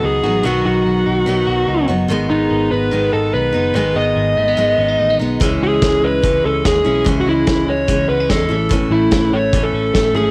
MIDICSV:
0, 0, Header, 1, 6, 480
1, 0, Start_track
1, 0, Tempo, 412939
1, 522, Time_signature, 4, 2, 24, 8
1, 11983, End_track
2, 0, Start_track
2, 0, Title_t, "Lead electric guitar"
2, 0, Program_c, 0, 29
2, 60, Note_on_c, 0, 68, 78
2, 529, Note_off_c, 0, 68, 0
2, 534, Note_on_c, 0, 66, 70
2, 751, Note_off_c, 0, 66, 0
2, 765, Note_on_c, 0, 66, 79
2, 2156, Note_off_c, 0, 66, 0
2, 2669, Note_on_c, 0, 63, 75
2, 3120, Note_off_c, 0, 63, 0
2, 3155, Note_on_c, 0, 71, 78
2, 3635, Note_off_c, 0, 71, 0
2, 3640, Note_on_c, 0, 69, 84
2, 3880, Note_off_c, 0, 69, 0
2, 3884, Note_on_c, 0, 71, 75
2, 4329, Note_off_c, 0, 71, 0
2, 4364, Note_on_c, 0, 71, 69
2, 4606, Note_on_c, 0, 75, 80
2, 4610, Note_off_c, 0, 71, 0
2, 5998, Note_off_c, 0, 75, 0
2, 6547, Note_on_c, 0, 68, 82
2, 7020, Note_on_c, 0, 71, 76
2, 7029, Note_off_c, 0, 68, 0
2, 7459, Note_off_c, 0, 71, 0
2, 7503, Note_on_c, 0, 69, 86
2, 7740, Note_off_c, 0, 69, 0
2, 7746, Note_on_c, 0, 68, 81
2, 8182, Note_off_c, 0, 68, 0
2, 8374, Note_on_c, 0, 66, 56
2, 8450, Note_off_c, 0, 66, 0
2, 8471, Note_on_c, 0, 64, 82
2, 8945, Note_on_c, 0, 73, 87
2, 8951, Note_off_c, 0, 64, 0
2, 9382, Note_off_c, 0, 73, 0
2, 9404, Note_on_c, 0, 71, 80
2, 9642, Note_on_c, 0, 69, 91
2, 9651, Note_off_c, 0, 71, 0
2, 10089, Note_off_c, 0, 69, 0
2, 10368, Note_on_c, 0, 64, 80
2, 10851, Note_on_c, 0, 73, 80
2, 10859, Note_off_c, 0, 64, 0
2, 11199, Note_on_c, 0, 69, 98
2, 11216, Note_off_c, 0, 73, 0
2, 11541, Note_off_c, 0, 69, 0
2, 11555, Note_on_c, 0, 69, 80
2, 11780, Note_off_c, 0, 69, 0
2, 11804, Note_on_c, 0, 68, 72
2, 11983, Note_off_c, 0, 68, 0
2, 11983, End_track
3, 0, Start_track
3, 0, Title_t, "Steel-string acoustic guitar"
3, 0, Program_c, 1, 25
3, 0, Note_on_c, 1, 51, 50
3, 0, Note_on_c, 1, 54, 54
3, 0, Note_on_c, 1, 59, 50
3, 0, Note_on_c, 1, 63, 62
3, 269, Note_off_c, 1, 63, 0
3, 273, Note_on_c, 1, 63, 54
3, 283, Note_off_c, 1, 54, 0
3, 287, Note_off_c, 1, 59, 0
3, 291, Note_on_c, 1, 59, 43
3, 305, Note_on_c, 1, 54, 42
3, 503, Note_on_c, 1, 47, 70
3, 506, Note_off_c, 1, 51, 0
3, 511, Note_on_c, 1, 51, 66
3, 512, Note_off_c, 1, 54, 0
3, 517, Note_off_c, 1, 63, 0
3, 523, Note_off_c, 1, 59, 0
3, 526, Note_on_c, 1, 54, 70
3, 537, Note_on_c, 1, 59, 70
3, 547, Note_on_c, 1, 63, 76
3, 1461, Note_off_c, 1, 51, 0
3, 1466, Note_off_c, 1, 54, 0
3, 1466, Note_on_c, 1, 51, 55
3, 1471, Note_off_c, 1, 47, 0
3, 1480, Note_on_c, 1, 54, 57
3, 1482, Note_off_c, 1, 59, 0
3, 1487, Note_on_c, 1, 59, 55
3, 1491, Note_off_c, 1, 63, 0
3, 1496, Note_on_c, 1, 63, 67
3, 2178, Note_off_c, 1, 63, 0
3, 2182, Note_on_c, 1, 63, 50
3, 2198, Note_off_c, 1, 59, 0
3, 2200, Note_off_c, 1, 54, 0
3, 2202, Note_on_c, 1, 59, 49
3, 2216, Note_on_c, 1, 54, 47
3, 2421, Note_on_c, 1, 44, 79
3, 2430, Note_off_c, 1, 51, 0
3, 2431, Note_off_c, 1, 63, 0
3, 2435, Note_on_c, 1, 51, 77
3, 2439, Note_off_c, 1, 54, 0
3, 2441, Note_off_c, 1, 59, 0
3, 2444, Note_on_c, 1, 56, 82
3, 2457, Note_on_c, 1, 59, 84
3, 2466, Note_on_c, 1, 63, 81
3, 3371, Note_off_c, 1, 51, 0
3, 3385, Note_on_c, 1, 51, 49
3, 3390, Note_off_c, 1, 59, 0
3, 3391, Note_off_c, 1, 44, 0
3, 3394, Note_off_c, 1, 56, 0
3, 3399, Note_on_c, 1, 56, 46
3, 3402, Note_off_c, 1, 63, 0
3, 3404, Note_on_c, 1, 59, 52
3, 3416, Note_on_c, 1, 63, 56
3, 4083, Note_off_c, 1, 63, 0
3, 4097, Note_on_c, 1, 63, 50
3, 4103, Note_off_c, 1, 59, 0
3, 4113, Note_off_c, 1, 51, 0
3, 4117, Note_on_c, 1, 59, 42
3, 4128, Note_off_c, 1, 56, 0
3, 4133, Note_on_c, 1, 56, 36
3, 4345, Note_on_c, 1, 44, 65
3, 4349, Note_off_c, 1, 63, 0
3, 4357, Note_off_c, 1, 56, 0
3, 4359, Note_off_c, 1, 59, 0
3, 4365, Note_on_c, 1, 51, 67
3, 4371, Note_on_c, 1, 56, 76
3, 4382, Note_on_c, 1, 59, 66
3, 4390, Note_on_c, 1, 63, 73
3, 5297, Note_off_c, 1, 51, 0
3, 5311, Note_on_c, 1, 51, 64
3, 5314, Note_off_c, 1, 44, 0
3, 5316, Note_off_c, 1, 59, 0
3, 5318, Note_off_c, 1, 56, 0
3, 5323, Note_on_c, 1, 56, 53
3, 5329, Note_off_c, 1, 63, 0
3, 5330, Note_on_c, 1, 59, 58
3, 5343, Note_on_c, 1, 63, 58
3, 6023, Note_off_c, 1, 63, 0
3, 6037, Note_off_c, 1, 51, 0
3, 6037, Note_on_c, 1, 63, 52
3, 6046, Note_off_c, 1, 59, 0
3, 6059, Note_on_c, 1, 59, 50
3, 6064, Note_off_c, 1, 56, 0
3, 6068, Note_on_c, 1, 56, 42
3, 6275, Note_on_c, 1, 49, 76
3, 6280, Note_off_c, 1, 63, 0
3, 6283, Note_off_c, 1, 56, 0
3, 6291, Note_off_c, 1, 59, 0
3, 6296, Note_on_c, 1, 56, 89
3, 6313, Note_on_c, 1, 61, 83
3, 6325, Note_on_c, 1, 64, 76
3, 7220, Note_off_c, 1, 49, 0
3, 7233, Note_off_c, 1, 56, 0
3, 7234, Note_on_c, 1, 49, 49
3, 7247, Note_on_c, 1, 56, 50
3, 7254, Note_off_c, 1, 61, 0
3, 7259, Note_on_c, 1, 61, 46
3, 7264, Note_off_c, 1, 64, 0
3, 7269, Note_on_c, 1, 64, 55
3, 7953, Note_off_c, 1, 64, 0
3, 7957, Note_on_c, 1, 64, 51
3, 7959, Note_off_c, 1, 49, 0
3, 7965, Note_off_c, 1, 56, 0
3, 7968, Note_off_c, 1, 61, 0
3, 7972, Note_on_c, 1, 61, 45
3, 7989, Note_on_c, 1, 56, 36
3, 8189, Note_on_c, 1, 49, 69
3, 8193, Note_off_c, 1, 56, 0
3, 8201, Note_off_c, 1, 64, 0
3, 8207, Note_on_c, 1, 56, 72
3, 8208, Note_off_c, 1, 61, 0
3, 8226, Note_on_c, 1, 61, 69
3, 8234, Note_on_c, 1, 64, 80
3, 9142, Note_off_c, 1, 49, 0
3, 9156, Note_on_c, 1, 49, 49
3, 9157, Note_off_c, 1, 56, 0
3, 9171, Note_on_c, 1, 56, 48
3, 9172, Note_off_c, 1, 61, 0
3, 9177, Note_on_c, 1, 61, 59
3, 9182, Note_off_c, 1, 64, 0
3, 9187, Note_on_c, 1, 64, 51
3, 9860, Note_off_c, 1, 64, 0
3, 9865, Note_on_c, 1, 64, 52
3, 9876, Note_off_c, 1, 61, 0
3, 9879, Note_off_c, 1, 49, 0
3, 9880, Note_on_c, 1, 61, 48
3, 9887, Note_off_c, 1, 56, 0
3, 9893, Note_on_c, 1, 57, 43
3, 10103, Note_on_c, 1, 45, 63
3, 10113, Note_off_c, 1, 57, 0
3, 10114, Note_off_c, 1, 64, 0
3, 10119, Note_on_c, 1, 52, 70
3, 10122, Note_off_c, 1, 61, 0
3, 10127, Note_on_c, 1, 57, 68
3, 10138, Note_on_c, 1, 61, 74
3, 10148, Note_on_c, 1, 64, 80
3, 11071, Note_off_c, 1, 45, 0
3, 11075, Note_off_c, 1, 52, 0
3, 11080, Note_on_c, 1, 52, 56
3, 11084, Note_off_c, 1, 57, 0
3, 11089, Note_on_c, 1, 57, 54
3, 11099, Note_off_c, 1, 61, 0
3, 11104, Note_on_c, 1, 61, 49
3, 11107, Note_off_c, 1, 64, 0
3, 11112, Note_on_c, 1, 64, 55
3, 11788, Note_off_c, 1, 64, 0
3, 11792, Note_on_c, 1, 64, 49
3, 11806, Note_off_c, 1, 61, 0
3, 11810, Note_on_c, 1, 61, 44
3, 11820, Note_off_c, 1, 57, 0
3, 11825, Note_on_c, 1, 57, 43
3, 11983, Note_off_c, 1, 52, 0
3, 11983, Note_off_c, 1, 57, 0
3, 11983, Note_off_c, 1, 61, 0
3, 11983, Note_off_c, 1, 64, 0
3, 11983, End_track
4, 0, Start_track
4, 0, Title_t, "Clean electric guitar"
4, 0, Program_c, 2, 27
4, 0, Note_on_c, 2, 54, 62
4, 0, Note_on_c, 2, 59, 60
4, 0, Note_on_c, 2, 66, 50
4, 35, Note_on_c, 2, 63, 43
4, 257, Note_off_c, 2, 66, 0
4, 271, Note_on_c, 2, 66, 47
4, 497, Note_off_c, 2, 54, 0
4, 511, Note_on_c, 2, 54, 71
4, 749, Note_off_c, 2, 63, 0
4, 754, Note_on_c, 2, 63, 52
4, 995, Note_off_c, 2, 59, 0
4, 1000, Note_on_c, 2, 59, 45
4, 1229, Note_off_c, 2, 63, 0
4, 1233, Note_on_c, 2, 63, 47
4, 1460, Note_off_c, 2, 59, 0
4, 1464, Note_on_c, 2, 59, 60
4, 1692, Note_off_c, 2, 66, 0
4, 1706, Note_on_c, 2, 66, 53
4, 1944, Note_off_c, 2, 63, 0
4, 1949, Note_on_c, 2, 63, 52
4, 2171, Note_off_c, 2, 66, 0
4, 2184, Note_on_c, 2, 66, 51
4, 2421, Note_off_c, 2, 54, 0
4, 2425, Note_on_c, 2, 51, 62
4, 2480, Note_off_c, 2, 66, 0
4, 2663, Note_off_c, 2, 59, 0
4, 2668, Note_on_c, 2, 59, 56
4, 2895, Note_off_c, 2, 51, 0
4, 2909, Note_on_c, 2, 51, 51
4, 3133, Note_off_c, 2, 59, 0
4, 3147, Note_on_c, 2, 59, 47
4, 3376, Note_off_c, 2, 51, 0
4, 3390, Note_on_c, 2, 51, 58
4, 3628, Note_off_c, 2, 63, 0
4, 3632, Note_on_c, 2, 63, 50
4, 3864, Note_off_c, 2, 59, 0
4, 3878, Note_on_c, 2, 59, 50
4, 4101, Note_off_c, 2, 63, 0
4, 4115, Note_on_c, 2, 63, 51
4, 4337, Note_off_c, 2, 51, 0
4, 4351, Note_on_c, 2, 51, 68
4, 4585, Note_off_c, 2, 59, 0
4, 4599, Note_on_c, 2, 59, 54
4, 4822, Note_off_c, 2, 51, 0
4, 4836, Note_on_c, 2, 51, 42
4, 5077, Note_off_c, 2, 59, 0
4, 5082, Note_on_c, 2, 57, 51
4, 5206, Note_off_c, 2, 57, 0
4, 5206, Note_on_c, 2, 59, 38
4, 5307, Note_off_c, 2, 51, 0
4, 5321, Note_on_c, 2, 51, 56
4, 5559, Note_off_c, 2, 63, 0
4, 5566, Note_on_c, 2, 61, 57
4, 5677, Note_off_c, 2, 61, 0
4, 5677, Note_on_c, 2, 63, 44
4, 5792, Note_off_c, 2, 59, 0
4, 5797, Note_on_c, 2, 57, 50
4, 5929, Note_off_c, 2, 57, 0
4, 5929, Note_on_c, 2, 59, 43
4, 6032, Note_off_c, 2, 63, 0
4, 6046, Note_on_c, 2, 63, 49
4, 6282, Note_off_c, 2, 51, 0
4, 6288, Note_on_c, 2, 52, 66
4, 6332, Note_off_c, 2, 63, 0
4, 6334, Note_off_c, 2, 59, 0
4, 6525, Note_on_c, 2, 56, 48
4, 6771, Note_off_c, 2, 52, 0
4, 6776, Note_on_c, 2, 52, 44
4, 7004, Note_off_c, 2, 56, 0
4, 7018, Note_on_c, 2, 56, 51
4, 7245, Note_off_c, 2, 52, 0
4, 7250, Note_on_c, 2, 52, 56
4, 7487, Note_on_c, 2, 61, 49
4, 7715, Note_off_c, 2, 56, 0
4, 7729, Note_on_c, 2, 56, 49
4, 7964, Note_off_c, 2, 61, 0
4, 7969, Note_on_c, 2, 61, 47
4, 8203, Note_off_c, 2, 52, 0
4, 8208, Note_on_c, 2, 52, 68
4, 8430, Note_off_c, 2, 56, 0
4, 8444, Note_on_c, 2, 56, 53
4, 8686, Note_off_c, 2, 52, 0
4, 8690, Note_on_c, 2, 52, 52
4, 8917, Note_off_c, 2, 56, 0
4, 8931, Note_on_c, 2, 56, 48
4, 9161, Note_off_c, 2, 52, 0
4, 9166, Note_on_c, 2, 52, 59
4, 9412, Note_off_c, 2, 61, 0
4, 9416, Note_on_c, 2, 59, 49
4, 9534, Note_off_c, 2, 59, 0
4, 9534, Note_on_c, 2, 61, 48
4, 9638, Note_off_c, 2, 56, 0
4, 9652, Note_on_c, 2, 56, 54
4, 9899, Note_off_c, 2, 52, 0
4, 9903, Note_on_c, 2, 52, 64
4, 9936, Note_off_c, 2, 56, 0
4, 9937, Note_off_c, 2, 61, 0
4, 10130, Note_off_c, 2, 52, 0
4, 10135, Note_on_c, 2, 52, 64
4, 10372, Note_on_c, 2, 57, 59
4, 10608, Note_off_c, 2, 52, 0
4, 10612, Note_on_c, 2, 52, 44
4, 10844, Note_off_c, 2, 57, 0
4, 10848, Note_on_c, 2, 57, 51
4, 11077, Note_off_c, 2, 52, 0
4, 11082, Note_on_c, 2, 52, 56
4, 11326, Note_on_c, 2, 61, 52
4, 11567, Note_off_c, 2, 57, 0
4, 11571, Note_on_c, 2, 57, 54
4, 11802, Note_off_c, 2, 61, 0
4, 11806, Note_on_c, 2, 61, 51
4, 11983, Note_off_c, 2, 52, 0
4, 11983, Note_off_c, 2, 57, 0
4, 11983, Note_off_c, 2, 61, 0
4, 11983, End_track
5, 0, Start_track
5, 0, Title_t, "Picked electric bass"
5, 0, Program_c, 3, 34
5, 35, Note_on_c, 3, 37, 82
5, 234, Note_off_c, 3, 37, 0
5, 275, Note_on_c, 3, 33, 70
5, 474, Note_off_c, 3, 33, 0
5, 516, Note_on_c, 3, 35, 86
5, 715, Note_off_c, 3, 35, 0
5, 761, Note_on_c, 3, 35, 70
5, 958, Note_off_c, 3, 35, 0
5, 993, Note_on_c, 3, 35, 75
5, 1193, Note_off_c, 3, 35, 0
5, 1240, Note_on_c, 3, 35, 75
5, 1437, Note_off_c, 3, 35, 0
5, 1474, Note_on_c, 3, 35, 89
5, 1673, Note_off_c, 3, 35, 0
5, 1712, Note_on_c, 3, 35, 86
5, 1912, Note_off_c, 3, 35, 0
5, 1948, Note_on_c, 3, 37, 73
5, 2150, Note_off_c, 3, 37, 0
5, 2193, Note_on_c, 3, 30, 75
5, 2393, Note_off_c, 3, 30, 0
5, 2429, Note_on_c, 3, 32, 92
5, 2630, Note_off_c, 3, 32, 0
5, 2675, Note_on_c, 3, 32, 90
5, 2874, Note_off_c, 3, 32, 0
5, 2919, Note_on_c, 3, 32, 100
5, 3116, Note_off_c, 3, 32, 0
5, 3160, Note_on_c, 3, 32, 74
5, 3357, Note_off_c, 3, 32, 0
5, 3403, Note_on_c, 3, 32, 90
5, 3599, Note_off_c, 3, 32, 0
5, 3641, Note_on_c, 3, 32, 78
5, 3838, Note_off_c, 3, 32, 0
5, 3881, Note_on_c, 3, 35, 83
5, 4078, Note_off_c, 3, 35, 0
5, 4119, Note_on_c, 3, 30, 73
5, 4317, Note_off_c, 3, 30, 0
5, 4355, Note_on_c, 3, 32, 91
5, 4554, Note_off_c, 3, 32, 0
5, 4598, Note_on_c, 3, 32, 73
5, 4796, Note_off_c, 3, 32, 0
5, 4841, Note_on_c, 3, 32, 76
5, 5038, Note_off_c, 3, 32, 0
5, 5084, Note_on_c, 3, 32, 77
5, 5280, Note_off_c, 3, 32, 0
5, 5317, Note_on_c, 3, 32, 74
5, 5516, Note_off_c, 3, 32, 0
5, 5562, Note_on_c, 3, 32, 93
5, 5759, Note_off_c, 3, 32, 0
5, 5798, Note_on_c, 3, 33, 70
5, 5996, Note_off_c, 3, 33, 0
5, 6041, Note_on_c, 3, 35, 63
5, 6238, Note_off_c, 3, 35, 0
5, 6286, Note_on_c, 3, 37, 94
5, 6482, Note_off_c, 3, 37, 0
5, 6528, Note_on_c, 3, 37, 74
5, 6723, Note_off_c, 3, 37, 0
5, 6768, Note_on_c, 3, 37, 84
5, 6963, Note_off_c, 3, 37, 0
5, 7004, Note_on_c, 3, 37, 75
5, 7200, Note_off_c, 3, 37, 0
5, 7248, Note_on_c, 3, 37, 81
5, 7443, Note_off_c, 3, 37, 0
5, 7488, Note_on_c, 3, 37, 74
5, 7683, Note_off_c, 3, 37, 0
5, 7733, Note_on_c, 3, 39, 80
5, 7926, Note_off_c, 3, 39, 0
5, 7973, Note_on_c, 3, 35, 70
5, 8166, Note_off_c, 3, 35, 0
5, 8205, Note_on_c, 3, 37, 94
5, 8401, Note_off_c, 3, 37, 0
5, 8444, Note_on_c, 3, 37, 82
5, 8641, Note_off_c, 3, 37, 0
5, 8919, Note_on_c, 3, 37, 71
5, 9118, Note_off_c, 3, 37, 0
5, 9161, Note_on_c, 3, 37, 79
5, 9359, Note_off_c, 3, 37, 0
5, 9402, Note_on_c, 3, 37, 84
5, 9599, Note_off_c, 3, 37, 0
5, 9643, Note_on_c, 3, 40, 76
5, 9840, Note_off_c, 3, 40, 0
5, 9878, Note_on_c, 3, 33, 80
5, 10273, Note_off_c, 3, 33, 0
5, 10351, Note_on_c, 3, 33, 76
5, 10552, Note_off_c, 3, 33, 0
5, 10599, Note_on_c, 3, 33, 85
5, 10797, Note_off_c, 3, 33, 0
5, 10831, Note_on_c, 3, 33, 80
5, 11032, Note_off_c, 3, 33, 0
5, 11079, Note_on_c, 3, 33, 91
5, 11276, Note_off_c, 3, 33, 0
5, 11308, Note_on_c, 3, 33, 84
5, 11509, Note_off_c, 3, 33, 0
5, 11561, Note_on_c, 3, 33, 70
5, 11757, Note_off_c, 3, 33, 0
5, 11786, Note_on_c, 3, 32, 72
5, 11983, Note_off_c, 3, 32, 0
5, 11983, End_track
6, 0, Start_track
6, 0, Title_t, "Drums"
6, 6288, Note_on_c, 9, 36, 83
6, 6290, Note_on_c, 9, 42, 57
6, 6404, Note_off_c, 9, 36, 0
6, 6406, Note_off_c, 9, 42, 0
6, 6764, Note_on_c, 9, 42, 61
6, 6767, Note_on_c, 9, 36, 93
6, 6771, Note_on_c, 9, 38, 94
6, 6881, Note_off_c, 9, 42, 0
6, 6884, Note_off_c, 9, 36, 0
6, 6887, Note_off_c, 9, 38, 0
6, 7249, Note_on_c, 9, 36, 88
6, 7249, Note_on_c, 9, 42, 63
6, 7365, Note_off_c, 9, 36, 0
6, 7365, Note_off_c, 9, 42, 0
6, 7732, Note_on_c, 9, 38, 77
6, 7733, Note_on_c, 9, 36, 89
6, 7734, Note_on_c, 9, 42, 64
6, 7848, Note_off_c, 9, 38, 0
6, 7850, Note_off_c, 9, 36, 0
6, 7850, Note_off_c, 9, 42, 0
6, 8209, Note_on_c, 9, 36, 93
6, 8209, Note_on_c, 9, 42, 53
6, 8325, Note_off_c, 9, 36, 0
6, 8325, Note_off_c, 9, 42, 0
6, 8682, Note_on_c, 9, 42, 74
6, 8687, Note_on_c, 9, 36, 106
6, 8688, Note_on_c, 9, 38, 111
6, 8798, Note_off_c, 9, 42, 0
6, 8803, Note_off_c, 9, 36, 0
6, 8805, Note_off_c, 9, 38, 0
6, 9163, Note_on_c, 9, 36, 87
6, 9166, Note_on_c, 9, 42, 68
6, 9279, Note_off_c, 9, 36, 0
6, 9282, Note_off_c, 9, 42, 0
6, 9646, Note_on_c, 9, 38, 82
6, 9647, Note_on_c, 9, 36, 80
6, 9648, Note_on_c, 9, 42, 62
6, 9762, Note_off_c, 9, 38, 0
6, 9763, Note_off_c, 9, 36, 0
6, 9764, Note_off_c, 9, 42, 0
6, 10119, Note_on_c, 9, 42, 58
6, 10122, Note_on_c, 9, 36, 93
6, 10236, Note_off_c, 9, 42, 0
6, 10238, Note_off_c, 9, 36, 0
6, 10593, Note_on_c, 9, 42, 71
6, 10599, Note_on_c, 9, 38, 100
6, 10601, Note_on_c, 9, 36, 104
6, 10709, Note_off_c, 9, 42, 0
6, 10715, Note_off_c, 9, 38, 0
6, 10717, Note_off_c, 9, 36, 0
6, 11078, Note_on_c, 9, 36, 89
6, 11078, Note_on_c, 9, 42, 57
6, 11194, Note_off_c, 9, 36, 0
6, 11194, Note_off_c, 9, 42, 0
6, 11563, Note_on_c, 9, 36, 89
6, 11563, Note_on_c, 9, 38, 77
6, 11565, Note_on_c, 9, 42, 59
6, 11679, Note_off_c, 9, 36, 0
6, 11679, Note_off_c, 9, 38, 0
6, 11681, Note_off_c, 9, 42, 0
6, 11983, End_track
0, 0, End_of_file